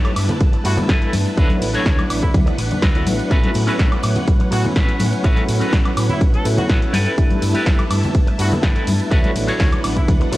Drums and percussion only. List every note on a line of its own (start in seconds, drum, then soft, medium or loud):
0.05 closed hi-hat soft
0.05 high conga medium
0.05 high woodblock medium
0.16 open hi-hat loud
0.16 ride medium
0.16 tambourine medium
0.16 high woodblock medium
0.29 closed hi-hat soft
0.29 tambourine medium
0.29 low conga loud
0.40 kick loud
0.40 closed hi-hat medium
0.40 ride medium
0.40 tambourine soft
0.40 high conga loud
0.53 closed hi-hat soft
0.65 open hi-hat loud
0.65 ride medium
0.65 tambourine medium
0.77 closed hi-hat soft
0.77 tambourine medium
0.77 high conga medium
0.77 low conga loud
0.89 kick loud
0.89 snare loud
0.89 closed hi-hat medium
0.89 ride medium
0.89 tambourine soft
1.02 closed hi-hat soft
1.13 open hi-hat loud
1.13 ride medium
1.13 tambourine medium
1.13 high conga medium
1.26 closed hi-hat soft
1.26 tambourine soft
1.38 kick loud
1.38 closed hi-hat medium
1.38 ride medium
1.50 closed hi-hat soft
1.50 high conga loud
1.62 open hi-hat loud
1.62 ride medium
1.62 tambourine medium
1.74 closed hi-hat soft
1.74 tambourine medium
1.86 kick loud
1.86 snare loud
1.86 closed hi-hat medium
1.86 ride medium
1.99 closed hi-hat soft
1.99 high conga medium
1.99 high woodblock medium
2.10 open hi-hat loud
2.10 ride medium
2.10 tambourine medium
2.10 high woodblock medium
2.23 kick medium
2.23 closed hi-hat soft
2.23 tambourine medium
2.23 low conga loud
2.34 kick loud
2.34 closed hi-hat medium
2.34 ride medium
2.34 tambourine soft
2.34 high conga medium
2.47 closed hi-hat soft
2.58 open hi-hat loud
2.58 ride medium
2.58 tambourine medium
2.71 closed hi-hat soft
2.71 tambourine soft
2.71 high conga medium
2.71 low conga medium
2.82 kick loud
2.82 snare loud
2.82 closed hi-hat medium
2.82 ride medium
2.82 tambourine soft
2.95 closed hi-hat soft
3.07 open hi-hat loud
3.07 ride medium
3.07 tambourine medium
3.07 high conga loud
3.19 closed hi-hat soft
3.19 tambourine medium
3.31 kick loud
3.31 closed hi-hat medium
3.31 ride medium
3.31 tambourine soft
3.44 closed hi-hat soft
3.44 high conga medium
3.54 open hi-hat loud
3.54 ride medium
3.54 tambourine medium
3.67 closed hi-hat soft
3.67 tambourine medium
3.79 kick loud
3.79 snare loud
3.79 closed hi-hat medium
3.79 ride medium
3.92 closed hi-hat soft
3.92 high conga medium
3.92 high woodblock medium
4.03 open hi-hat loud
4.03 ride medium
4.03 tambourine medium
4.03 high woodblock medium
4.15 closed hi-hat soft
4.15 tambourine medium
4.15 low conga medium
4.28 kick loud
4.28 closed hi-hat medium
4.28 ride medium
4.28 tambourine soft
4.28 high conga medium
4.40 closed hi-hat soft
4.52 open hi-hat loud
4.52 ride medium
4.52 tambourine medium
4.64 closed hi-hat soft
4.64 tambourine soft
4.64 high conga medium
4.64 low conga medium
4.76 kick loud
4.76 snare loud
4.76 closed hi-hat medium
4.76 ride medium
4.76 tambourine soft
4.89 closed hi-hat soft
4.99 open hi-hat loud
4.99 ride medium
4.99 tambourine medium
4.99 high conga medium
5.12 closed hi-hat soft
5.12 tambourine medium
5.24 kick loud
5.24 closed hi-hat medium
5.24 ride medium
5.36 closed hi-hat soft
5.36 high conga medium
5.49 open hi-hat loud
5.49 ride medium
5.49 tambourine medium
5.61 closed hi-hat soft
5.61 tambourine soft
5.73 kick loud
5.73 snare loud
5.73 closed hi-hat medium
5.73 ride medium
5.73 tambourine soft
5.85 closed hi-hat soft
5.85 high conga medium
5.85 high woodblock medium
5.97 open hi-hat loud
5.97 ride medium
5.97 tambourine loud
5.97 high woodblock medium
6.09 closed hi-hat soft
6.09 tambourine medium
6.09 low conga medium
6.21 kick loud
6.21 closed hi-hat medium
6.21 ride medium
6.21 tambourine soft
6.21 high conga loud
6.34 closed hi-hat soft
6.45 open hi-hat loud
6.45 ride medium
6.45 tambourine medium
6.57 closed hi-hat soft
6.57 tambourine soft
6.57 high conga medium
6.57 low conga loud
6.69 kick loud
6.69 snare loud
6.69 closed hi-hat medium
6.69 ride medium
6.69 tambourine soft
6.82 closed hi-hat soft
6.93 open hi-hat loud
6.93 ride medium
6.93 tambourine medium
6.93 high conga medium
7.05 closed hi-hat soft
7.05 tambourine medium
7.18 kick loud
7.18 closed hi-hat medium
7.18 ride medium
7.18 tambourine soft
7.30 closed hi-hat soft
7.30 high conga medium
7.42 open hi-hat loud
7.42 ride medium
7.42 tambourine loud
7.55 closed hi-hat soft
7.55 tambourine medium
7.66 kick loud
7.66 snare loud
7.66 closed hi-hat medium
7.66 ride medium
7.79 closed hi-hat soft
7.79 high conga medium
7.79 high woodblock medium
7.91 open hi-hat loud
7.91 ride medium
7.91 tambourine medium
7.91 high woodblock medium
8.03 closed hi-hat soft
8.03 tambourine medium
8.03 low conga medium
8.14 kick loud
8.14 closed hi-hat medium
8.14 ride medium
8.14 tambourine soft
8.14 high conga medium
8.27 closed hi-hat soft
8.39 open hi-hat loud
8.39 ride medium
8.39 tambourine loud
8.52 closed hi-hat soft
8.52 tambourine medium
8.52 high conga medium
8.52 low conga loud
8.63 kick loud
8.63 snare loud
8.63 closed hi-hat medium
8.63 ride medium
8.63 tambourine soft
8.76 closed hi-hat soft
8.87 open hi-hat loud
8.87 ride medium
8.87 tambourine loud
8.87 high conga medium
9.00 closed hi-hat soft
9.00 tambourine medium
9.11 kick loud
9.11 closed hi-hat medium
9.11 ride medium
9.11 tambourine soft
9.24 closed hi-hat soft
9.24 high conga medium
9.36 open hi-hat loud
9.36 ride medium
9.36 tambourine loud
9.48 closed hi-hat soft
9.48 tambourine medium
9.60 kick loud
9.60 snare loud
9.60 open hi-hat medium
9.60 ride medium
9.60 tambourine soft
9.72 closed hi-hat soft
9.72 high conga medium
9.72 high woodblock medium
9.84 open hi-hat loud
9.84 ride medium
9.84 tambourine medium
9.84 high woodblock medium
9.96 kick medium
9.96 closed hi-hat soft
9.96 tambourine medium
9.96 low conga medium
10.08 kick loud
10.08 closed hi-hat medium
10.08 ride medium
10.08 tambourine soft
10.08 high conga medium
10.21 closed hi-hat soft
10.33 open hi-hat loud
10.33 ride medium
10.33 tambourine medium